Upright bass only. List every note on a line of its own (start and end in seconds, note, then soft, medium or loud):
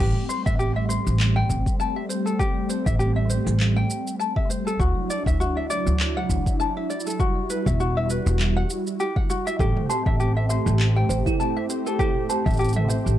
0.00 0.10 A1 medium
0.46 0.96 A1 medium
1.07 1.42 A1 medium
1.50 1.60 A1 medium
2.86 3.36 A1 medium
3.46 3.82 A1 medium
4.80 4.90 D2 medium
5.26 5.76 D2 medium
5.86 6.22 D2 medium
6.29 6.40 D2 medium
7.66 8.16 E1 medium
8.26 8.62 E1 medium
9.59 9.70 A1 medium
10.06 10.56 A1 medium
10.66 11.02 A1 medium
11.09 11.20 A1 medium
12.46 12.96 A1 medium
13.06 13.19 A1 medium